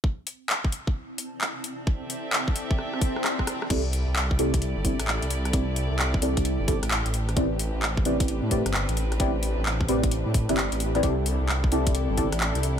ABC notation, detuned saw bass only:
X:1
M:4/4
L:1/16
Q:"Swing 16ths" 1/4=131
K:C
V:1 name="Detuned saw bass" clef=bass
z16 | z16 | C,,3 C,,3 C,,3 G,,,2 A,,,2 C,,3 | C,,3 C,,3 C,,3 G,,,2 A,,,2 A,,,3 |
A,,,3 A,,,3 A,,,3 A,,2 G,,,2 A,,,3 | A,,,3 A,,,3 A,,,3 A,,2 G,,,2 A,,,3 | C,,3 C,,3 C,,3 G,,,2 A,,,2 C,,3 |]